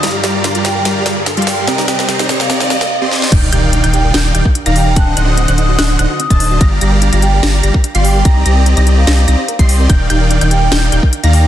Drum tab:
CC |--------------------------------|--------------------------------|x-------------------------------|--------------------------------|
HH |x---x---x-x-x---x---x---x-xxo---|x---x---x-x-x---x---x-----------|x---x---x-x-x---x---x---x-x-o---|x---x---x-x-x---x---x---x-x-o---|
SD |o---o---o---o---o---o---o---o---|o-o-o-o-o-o-o-o-o-o-o-o-----o-o-|----------------o---------------|----------------o---------------|
BD |--------------------------------|--------------------------------|o---------------------o---------|o-------------------------o-----|

CC |--------------------------------|--------------------------------|--------------------------------|
HH |x---x---x-x-x---x---x---x-x-o---|x---x---x-x-x---x---x---x-x-o---|x---x---x-x-x---x---x---x-x-o---|
SD |----------------o---------------|----------------o---------------|----------------o---------------|
BD |o---------------------o---------|o-------------------------o-----|o---------------------o---------|